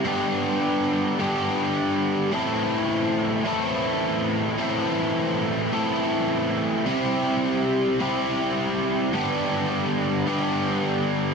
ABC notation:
X:1
M:4/4
L:1/8
Q:1/4=106
K:Am
V:1 name="Overdriven electric guitar"
[G,,D,G,B,DG]4 [G,,D,G,B,DG]4 | [A,,E,CEA]4 [A,,E,CEA]4 | [A,,E,CEA]4 [A,,E,CEA]4 | [C,G,CEG]4 [C,G,CEG]4 |
[G,,D,G,B,DG]4 [G,,D,G,B,DG]4 |]